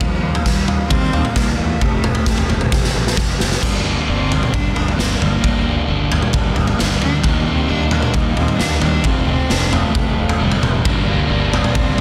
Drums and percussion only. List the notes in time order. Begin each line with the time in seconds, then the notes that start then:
0.01 kick, floor tom
0.35 floor tom
0.46 kick, snare
0.68 floor tom
0.90 kick, floor tom
1.13 floor tom
1.25 floor tom
1.36 kick, snare, floor tom
1.81 kick, floor tom
2.04 floor tom, mid tom
2.15 floor tom
2.26 kick, snare
2.38 floor tom
2.50 floor tom
2.61 mid tom
2.72 kick, snare
2.84 snare
3.07 snare
3.17 kick, snare
3.40 snare
3.52 snare
3.63 kick, floor tom, crash
4.32 floor tom
4.43 mid tom
4.54 kick, floor tom
4.76 floor tom
4.88 floor tom
4.99 snare
5.22 floor tom
5.44 kick, floor tom
6.12 floor tom
6.22 mid tom
6.33 kick, floor tom
6.56 floor tom
6.67 floor tom
6.79 snare
7.02 floor tom
7.24 kick, floor tom
7.91 floor tom
8.03 mid tom
8.14 kick, floor tom
8.37 floor tom
8.48 floor tom
8.60 snare
8.82 floor tom
9.04 kick, floor tom
9.50 snare
9.73 floor tom
9.95 kick, floor tom
10.29 floor tom
10.52 floor tom
10.63 floor tom, mid tom
10.85 kick, floor tom
11.53 floor tom
11.64 mid tom
11.75 kick, floor tom